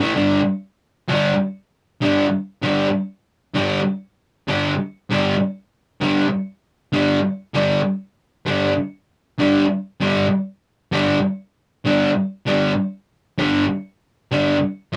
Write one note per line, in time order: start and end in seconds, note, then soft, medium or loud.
0.00 0.14 A2 medium
0.00 0.14 E3 medium
0.14 0.39 G2 medium
0.14 0.40 D3 medium
0.14 0.40 G3 medium
1.08 1.32 G2 medium
1.08 1.32 D3 medium
1.08 1.33 G3 loud
2.02 2.25 G2 medium
2.02 2.26 D3 medium
2.02 2.26 G3 medium
2.62 2.87 G2 medium
2.62 2.87 D3 medium
2.62 2.87 G3 loud
3.54 3.79 G2 medium
3.54 3.79 D3 medium
3.54 3.80 G3 medium
4.47 4.72 G2 medium
4.47 4.72 D3 medium
4.47 4.72 G3 medium
5.10 5.34 G2 medium
5.10 5.34 D3 medium
5.10 5.34 G3 medium
6.01 6.26 G2 medium
6.01 6.26 D3 medium
6.01 6.27 G3 medium
6.93 7.18 G2 medium
6.93 7.18 D3 medium
6.93 7.18 G3 loud
7.54 7.79 G2 medium
7.54 7.79 D3 medium
7.54 7.79 G3 loud
8.46 8.71 G2 medium
8.46 8.72 D3 loud
8.46 8.72 G3 medium
9.38 9.63 G2 medium
9.38 9.64 D3 medium
9.38 9.64 G3 medium
10.00 10.25 G2 medium
10.00 10.26 D3 medium
10.00 10.26 G3 loud
10.92 11.17 G2 medium
10.92 11.17 D3 medium
10.92 11.18 G3 loud
11.85 12.10 G2 medium
11.85 12.10 D3 medium
11.85 12.10 G3 loud
12.47 12.71 G2 medium
12.47 12.72 D3 loud
12.47 12.72 G3 medium
13.38 13.63 G2 medium
13.38 13.64 D3 medium
13.38 13.64 G3 loud
14.32 14.56 G2 medium
14.32 14.56 D3 medium
14.32 14.56 G3 medium
14.93 14.96 G2 medium